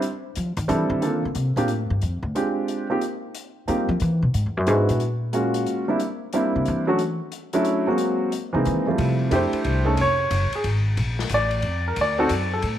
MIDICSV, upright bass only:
0, 0, Header, 1, 3, 480
1, 0, Start_track
1, 0, Tempo, 331858
1, 45, Time_signature, 3, 2, 24, 8
1, 18494, End_track
2, 0, Start_track
2, 0, Title_t, "Upright bass"
2, 0, Program_c, 0, 32
2, 533, Note_on_c, 0, 53, 87
2, 815, Note_off_c, 0, 53, 0
2, 823, Note_on_c, 0, 51, 104
2, 994, Note_off_c, 0, 51, 0
2, 1003, Note_on_c, 0, 52, 106
2, 1288, Note_off_c, 0, 52, 0
2, 1297, Note_on_c, 0, 51, 97
2, 1486, Note_off_c, 0, 51, 0
2, 1486, Note_on_c, 0, 50, 84
2, 1637, Note_off_c, 0, 50, 0
2, 1637, Note_on_c, 0, 51, 91
2, 1796, Note_off_c, 0, 51, 0
2, 1813, Note_on_c, 0, 50, 85
2, 1950, Note_off_c, 0, 50, 0
2, 1959, Note_on_c, 0, 48, 82
2, 2248, Note_off_c, 0, 48, 0
2, 2257, Note_on_c, 0, 46, 82
2, 2441, Note_off_c, 0, 46, 0
2, 2441, Note_on_c, 0, 45, 77
2, 2745, Note_off_c, 0, 45, 0
2, 2753, Note_on_c, 0, 43, 88
2, 2919, Note_off_c, 0, 43, 0
2, 2928, Note_on_c, 0, 41, 84
2, 3211, Note_off_c, 0, 41, 0
2, 3219, Note_on_c, 0, 38, 90
2, 3326, Note_off_c, 0, 38, 0
2, 5331, Note_on_c, 0, 55, 89
2, 5614, Note_off_c, 0, 55, 0
2, 5622, Note_on_c, 0, 53, 100
2, 5794, Note_off_c, 0, 53, 0
2, 5807, Note_on_c, 0, 52, 97
2, 6102, Note_off_c, 0, 52, 0
2, 6111, Note_on_c, 0, 47, 87
2, 6272, Note_off_c, 0, 47, 0
2, 6281, Note_on_c, 0, 44, 76
2, 6439, Note_off_c, 0, 44, 0
2, 6452, Note_on_c, 0, 40, 71
2, 6613, Note_off_c, 0, 40, 0
2, 6613, Note_on_c, 0, 42, 68
2, 6764, Note_off_c, 0, 42, 0
2, 6764, Note_on_c, 0, 44, 69
2, 7067, Note_off_c, 0, 44, 0
2, 7084, Note_on_c, 0, 46, 86
2, 8151, Note_off_c, 0, 46, 0
2, 9484, Note_on_c, 0, 49, 81
2, 9644, Note_off_c, 0, 49, 0
2, 9661, Note_on_c, 0, 52, 98
2, 10389, Note_off_c, 0, 52, 0
2, 12359, Note_on_c, 0, 48, 70
2, 12521, Note_off_c, 0, 48, 0
2, 12533, Note_on_c, 0, 51, 84
2, 12896, Note_off_c, 0, 51, 0
2, 12996, Note_on_c, 0, 48, 91
2, 13465, Note_off_c, 0, 48, 0
2, 13472, Note_on_c, 0, 41, 95
2, 13766, Note_off_c, 0, 41, 0
2, 13957, Note_on_c, 0, 36, 92
2, 14425, Note_off_c, 0, 36, 0
2, 14431, Note_on_c, 0, 29, 86
2, 14899, Note_off_c, 0, 29, 0
2, 14908, Note_on_c, 0, 30, 89
2, 15204, Note_off_c, 0, 30, 0
2, 15392, Note_on_c, 0, 32, 95
2, 15863, Note_off_c, 0, 32, 0
2, 15869, Note_on_c, 0, 34, 96
2, 16341, Note_off_c, 0, 34, 0
2, 16348, Note_on_c, 0, 33, 95
2, 16815, Note_off_c, 0, 33, 0
2, 16824, Note_on_c, 0, 41, 89
2, 17298, Note_off_c, 0, 41, 0
2, 17309, Note_on_c, 0, 38, 95
2, 17780, Note_off_c, 0, 38, 0
2, 17789, Note_on_c, 0, 42, 91
2, 18260, Note_off_c, 0, 42, 0
2, 18268, Note_on_c, 0, 45, 84
2, 18494, Note_off_c, 0, 45, 0
2, 18494, End_track
3, 0, Start_track
3, 0, Title_t, "Muted upright bass strokes"
3, 13779, Note_on_c, 9, 29, 35
3, 13924, Note_off_c, 9, 29, 0
3, 18494, End_track
0, 0, End_of_file